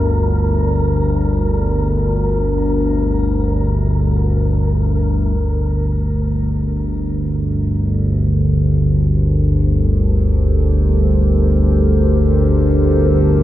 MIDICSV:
0, 0, Header, 1, 4, 480
1, 0, Start_track
1, 0, Key_signature, -2, "minor"
1, 0, Tempo, 500000
1, 12894, End_track
2, 0, Start_track
2, 0, Title_t, "Synth texture"
2, 0, Program_c, 0, 99
2, 0, Note_on_c, 0, 70, 77
2, 5167, Note_off_c, 0, 70, 0
2, 12894, End_track
3, 0, Start_track
3, 0, Title_t, "Analog synth pad"
3, 0, Program_c, 1, 89
3, 5161, Note_on_c, 1, 67, 86
3, 5665, Note_on_c, 1, 70, 73
3, 6112, Note_on_c, 1, 69, 63
3, 7186, Note_on_c, 1, 72, 88
3, 12894, Note_off_c, 1, 67, 0
3, 12894, Note_off_c, 1, 69, 0
3, 12894, Note_off_c, 1, 70, 0
3, 12894, Note_off_c, 1, 72, 0
3, 12894, End_track
4, 0, Start_track
4, 0, Title_t, "Synth drone"
4, 0, Program_c, 2, 95
4, 0, Note_on_c, 2, 31, 66
4, 0, Note_on_c, 2, 38, 72
4, 5153, Note_off_c, 2, 38, 0
4, 5154, Note_off_c, 2, 31, 0
4, 5165, Note_on_c, 2, 38, 75
4, 5166, Note_on_c, 2, 31, 76
4, 12894, Note_off_c, 2, 31, 0
4, 12894, Note_off_c, 2, 38, 0
4, 12894, End_track
0, 0, End_of_file